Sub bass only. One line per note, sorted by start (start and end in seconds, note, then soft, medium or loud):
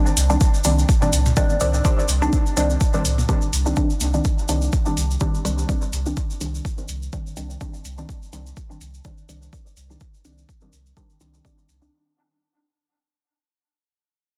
0.17 0.36 C2 medium
0.65 0.84 C2 medium
1.13 1.32 C2 medium
1.61 1.80 C2 medium
2.09 2.28 C2 medium
2.57 2.76 C2 medium
3.05 3.24 C2 medium
3.53 3.72 C2 medium
4.01 4.20 C2 medium
4.49 4.68 C2 loud
4.97 5.16 C2 medium
5.45 5.64 C2 medium
5.93 6.12 C2 medium
6.41 6.60 C2 medium
6.89 7.08 C2 medium
7.37 7.56 C2 medium
7.85 8.04 C2 medium
8.33 8.52 C2 medium
8.81 9.00 C2 medium
9.29 9.48 C2 medium
9.77 9.96 C2 medium
10.25 10.44 C2 medium
10.73 10.92 C2 medium
11.21 11.40 C2 medium
11.69 11.88 C2 medium